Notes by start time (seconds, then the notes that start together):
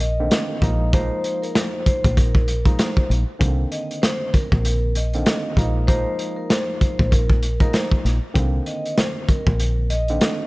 Already playing: A#1
0.00 D#5, closed hi-hat
0.20 D3 D#3 A#3 C4
0.31 snare, closed hi-hat
0.62 A#1 F3 G#3 A#3 D#4, kick, closed hi-hat
0.93 F3 G#3 A#3 D#4 C5, kick, closed hi-hat
1.24 closed hi-hat
1.42 A#4, closed hi-hat
1.55 C5, snare, closed hi-hat
1.86 C5, kick, closed hi-hat
2.04 A#1, kick, closed hi-hat
2.17 A#4, kick, closed hi-hat
2.35 kick
2.48 closed hi-hat
2.66 F3 G#3 A#3 D#4 A#4, kick, closed hi-hat
2.79 C5, snare, closed hi-hat
2.97 kick
3.10 A#1, closed hi-hat
3.39 C2 D3 D#3 A#3 C4, kick, closed hi-hat
3.72 D#5, closed hi-hat
3.91 closed hi-hat
4.02 C5, snare, closed hi-hat
4.33 A#4, kick, closed hi-hat
4.52 A#1, kick
4.65 closed hi-hat
4.95 D#5, closed hi-hat
5.13 D3 D#3 A#3 C4, closed hi-hat
5.26 snare, closed hi-hat
5.57 A#1 F3 G#3 A#3 D#4, kick, closed hi-hat
5.87 F3 G#3 A#3 D#4 C5, kick, closed hi-hat
6.19 closed hi-hat
6.36 A#4
6.50 C5, snare, closed hi-hat
6.81 C5, kick, closed hi-hat
6.99 A#1, kick
7.11 A#4, kick, closed hi-hat
7.30 kick
7.43 closed hi-hat
7.60 F3 G#3 A#3 D#4 A#4, kick, closed hi-hat
7.73 C5, snare, closed hi-hat
7.92 kick
8.05 A#1, snare, closed hi-hat
8.34 C2 D3 D#3 A#3 C4, kick, closed hi-hat
8.66 D#5, closed hi-hat
8.86 closed hi-hat
8.98 C5, snare, closed hi-hat
9.28 A#4, kick, closed hi-hat
9.47 A#1, kick
9.60 closed hi-hat
9.90 D#5, closed hi-hat
10.08 D3 D#3 A#3 C4, closed hi-hat
10.21 snare, closed hi-hat